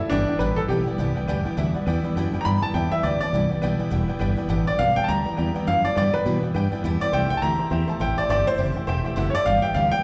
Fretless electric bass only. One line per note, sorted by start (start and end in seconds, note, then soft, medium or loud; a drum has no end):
0.11 0.28 G1 loud
0.28 muted fretless electric bass stroke medium
0.40 0.56 A1 loud
0.57 muted fretless electric bass stroke medium
0.69 0.86 B1 loud
0.87 muted fretless electric bass stroke medium
0.98 1.15 C2 medium
1.16 muted fretless electric bass stroke medium
1.28 1.45 D2 medium
1.45 muted fretless electric bass stroke medium
1.57 1.74 D2 loud
1.75 muted fretless electric bass stroke medium
1.87 2.03 E2 loud
2.04 muted fretless electric bass stroke medium
2.16 2.33 F#2 medium
2.34 muted fretless electric bass stroke medium
2.46 2.62 G2 medium
2.63 muted fretless electric bass stroke medium
2.74 2.91 E2 loud
2.92 muted fretless electric bass stroke medium
3.03 3.20 D2 loud
3.21 muted fretless electric bass stroke medium
3.33 3.49 C2 medium
3.62 3.79 B1 medium
3.80 muted fretless electric bass stroke medium
3.92 4.08 E1 loud
4.08 muted fretless electric bass stroke medium
4.21 4.38 G1 medium
4.38 muted fretless electric bass stroke medium
4.50 4.67 A1 medium
4.67 muted fretless electric bass stroke medium
4.79 4.96 B1 loud
4.97 muted fretless electric bass stroke medium
5.09 5.25 D2 loud
5.26 muted fretless electric bass stroke medium
5.38 5.55 E2 loud
5.55 muted fretless electric bass stroke medium
5.67 5.84 F#2 medium
5.84 muted fretless electric bass stroke medium
5.97 6.13 G2 loud
6.14 muted fretless electric bass stroke medium
6.26 6.42 B2 loud
6.43 muted fretless electric bass stroke medium
6.55 6.71 G2 loud
6.72 muted fretless electric bass stroke medium
6.84 7.00 E2 medium
7.01 muted fretless electric bass stroke medium
7.13 7.30 C2 medium
7.31 muted fretless electric bass stroke medium
7.42 7.58 D2 loud
7.59 muted fretless electric bass stroke medium
7.71 7.87 E2 loud
7.88 muted fretless electric bass stroke medium
8.00 8.17 A1 medium
8.18 muted fretless electric bass stroke medium
8.29 8.46 G1 medium
8.59 8.75 F#1 loud
8.76 muted fretless electric bass stroke medium
8.88 9.05 E1 loud
9.05 muted fretless electric bass stroke medium
9.17 9.34 F#1 medium
9.35 muted fretless electric bass stroke medium
9.46 9.63 G1 loud
9.75 9.92 D2 loud
9.92 muted fretless electric bass stroke medium